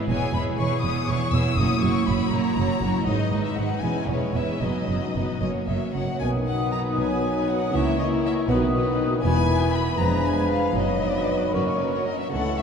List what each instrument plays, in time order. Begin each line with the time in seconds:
0.08 double bass section E1, cello section E2, viola section B3 E4, violin section G#4 C#5 G#5
0.33 double bass section E1, cello section E2, viola section B3 E4, violin section G#4 C#5 B5
0.59 double bass section E1, cello section E2, viola section B3 E4, violin section G#4 C#5 C#6
0.82 double bass section E1, cello section E2, viola section B3 E4, violin section G#4 C#5 D#6
1.07 double bass section E1, cello section E2, viola section B3 E4, violin section G#4 C#5 C#6
1.31 double bass section E1, cello section E2, viola section B3 E4, violin section G#4 C#5 E6
1.56 double bass section F#1, cello section F#2, viola section A#3 E4, violin section F#4 C#5 D#6
1.81 double bass section F#1, cello section F#2, viola section A#3 E4, violin section F#4 C#5 C#6
2.06 double bass section F#1, cello section F#2, viola section A#3 E4, violin section F#4 C#5 B5
2.31 double bass section F#1, cello section F#2, viola section A#3 E4, violin section F#4 C#5 A#5
2.56 double bass section F#1, cello section F#2, viola section A#3 E4, violin section F#4 C#5
2.82 double bass section F#1, cello section F#2, viola section A#3 E4, violin section F#4 C#5
3.06 double bass section G#1, cello section G#2, viola section G#3 D#4, violin section D#4 B4 D#5
3.31 double bass section G#1, cello section G#2, viola section G#3 D#4, violin section D#4 B4
3.44 violin section E5
3.56 double bass section G#1, cello section G#2, viola section G#3 D#4, violin section D#4 B4 F#5
3.82 double bass section E1, cello section E2, viola section G#3 C#4, violin section E4 B4 G#5
4.08 double bass section E1, cello section E2, viola section G#3 C#4, violin section E4 B4 C#5
4.34 double bass section E1, cello section E2, viola section G#3 C#4, violin section E4 B4 E5
4.60 double bass section F#1, cello section F#2, viola section F#3 B3, violin section D#4 B4 D#5
4.88 double bass section F#1, cello section F#2, viola section F#3 B3, violin section D#4 B4
5.15 double bass section F#1, cello section F#2, viola section F#3 B3, violin section D#4 B4
5.41 double bass section F#1, cello section F#2, viola section F#3 A#3, violin section C#4 C#5 D#5
5.68 double bass section F#1, cello section F#2, viola section F#3 A#3, violin section C#4 C#5 E5
5.94 double bass section F#1, cello section F#2, viola section F#3 A#3, violin section C#4 C#5 F#5
6.20 double bass section B1, cello section B2, bassoon D#3, french horn section B3 D#4, clarinet B4, violin section G#5, flute section D#6
6.47 viola section F#3 B3, violin section D#4 B4 F#5
6.72 violin section A#5
6.97 double bass section B1, cello section B2, bassoon F#3, violin section G#5
7.23 viola section F#3 B3, violin section D#4 B4
7.49 violin section F#5
7.73 double bass section C#2, cello section C#3, bassoon E3, viola section A#3 E4, french horn section A#3 E4, violin section E4 A#4 E5, clarinet C#5, flute section C#6
7.98 viola section A#3 E4, violin section E4 A#4 D#5
8.25 violin section E5
8.49 double bass section B1, cello section B2, bassoon D#3, viola section F#3 B3, french horn section B3 D#4, violin section D#4 B4 F#5, clarinet B4, flute section D#6
8.74 viola section F#3 B3, violin section D#4 B4
9.22 double bass section E1, cello section E2, bassoon E3, viola section E3 B3, french horn section B3 E4, violin section E4 B4 G#5, clarinet B4, flute section B5
9.47 viola section E3 B3, violin section E4 B4
9.73 violin section B5
9.98 double bass section F1, cello section F2, bassoon F3, viola section G#3 B3, french horn section B3 D4, violin section D4 B4 A#5, clarinet B4, flute section B5
10.24 viola section G#3 B3, violin section D4 B4 G#5
10.51 violin section F5
10.75 double bass section F#1, cello section F#2, bassoon F#3, viola section F#3 B3, french horn section B3 D#4, violin section F#4 B4 D#5, clarinet B4, flute section B5
11.01 viola section F#3 B3, violin section F#4 B4
11.53 double bass section F#1, cello section F#2, bassoon F#3, viola section F#3 C#4, french horn section A#3 C#4, violin section F#4 A#4 B4, clarinet A#4, flute section C#6
11.68 violin section C#5
11.79 viola section F#3 C#4, violin section F#4 A#4 B4
11.93 violin section C#5
12.06 violin section D#5
12.19 violin section E5
12.32 double bass section C#2, cello section C#3, bassoon E3, viola section A3 C#4, violin section E4 A4 F#5, clarinet A4, flute section C#6
12.58 viola section A3 C#4, violin section E4 A4 E5